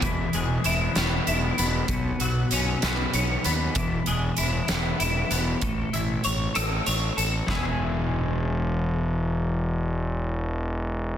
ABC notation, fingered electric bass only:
X:1
M:6/8
L:1/8
Q:3/8=64
K:E
V:1 name="Fingered electric bass" clef=bass
E,,, E,,, E,,, E,,, E,,, E,,, | B,,, B,,, B,,, B,,, B,,, D,, | E,,, E,,, E,,, E,,, E,,, E,,, | A,,, A,,, A,,, A,,, A,,, A,,, |
E,,,6- | E,,,6 |]